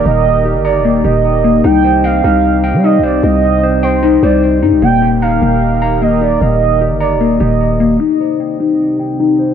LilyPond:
<<
  \new Staff \with { instrumentName = "Soft synth lead" } { \time 4/4 \key c \minor \tempo 4 = 151 ees''4. d''4 ees''4. | g''4 f''2 ees''8 d''8 | ees''4. c''4 d''8 r4 | g''4 f''2 ees''8 d''8 |
ees''4. d''4 ees''4. | r1 | }
  \new Staff \with { instrumentName = "Clean electric guitar" } { \time 4/4 \key c \minor <bes g' bes''>4 g'8 bes''8 bes8 g'4 bes8 | ees'8 c''8 g''8 ees'4 g''8 ees'8 c''8~ | c''4 c''8 g''8 ees'8 c''4 ees'8 | bes8 g'8 bes''8 bes4 bes''8 bes8 g'8~ |
g'4 g'8 bes''8 bes8 g'4 bes8 | ees'8 c''8 g''8 ees'4 g''8 ees'8 c''8 | }
  \new Staff \with { instrumentName = "Analog synth pad" } { \time 4/4 \key c \minor << { <ees' g' bes'>1~ | <ees' g' bes'>1~ | <ees' g' bes'>1 | <g' bes'>1~ |
<g' bes'>1 | <ees' g'>1 | } \\ { ees1 | <c c'>1~ | <c c'>1 | <ees ees'>1~ |
<ees ees'>1 | <c c'>1 | } >> }
  \new Staff \with { instrumentName = "808-style bass" } { \clef bass \time 4/4 \key c \minor ees,,4~ ees,,16 g,,8~ g,,32 ees,,8~ ees,,32 ees,,4. | c,4. c,4~ c,16 g8~ g32 c,8~ c,32 | c,2~ c,8 c,4 g,16 c,16 | ees,,4. ees,,2~ ees,,8 |
ees,,4~ ees,,16 g,,8~ g,,32 ees,,8~ ees,,32 ees,,4. | r1 | }
>>